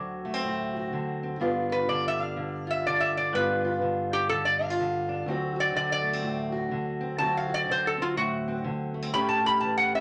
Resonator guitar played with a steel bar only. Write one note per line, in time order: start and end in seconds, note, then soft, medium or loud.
1.72 1.88 B4 medium
1.89 2.05 D5 medium
2.08 2.22 E5 loud
2.22 2.68 F5 medium
2.70 2.86 E5 loud
2.87 3.02 D5 medium
3.00 3.17 E5 medium
3.17 3.33 D5 medium
3.35 3.81 B4 loud
4.13 4.29 G4 loud
4.29 4.45 A4 loud
4.45 4.64 D5 medium
4.64 5.26 F5 medium
5.60 5.75 D5 loud
5.76 5.91 D5 medium
5.92 6.39 D5 loud
7.18 7.35 A5 medium
7.37 7.52 F5 medium
7.54 7.69 D5 loud
7.71 7.86 C5 loud
7.87 8.02 A4 medium
8.02 8.17 F4 medium
8.17 8.64 F#4 medium
9.14 9.29 B5 loud
9.29 9.45 A5 loud
9.46 9.62 B5 loud
9.60 9.77 A5 medium
9.77 9.93 F#5 loud
9.95 10.00 E5 medium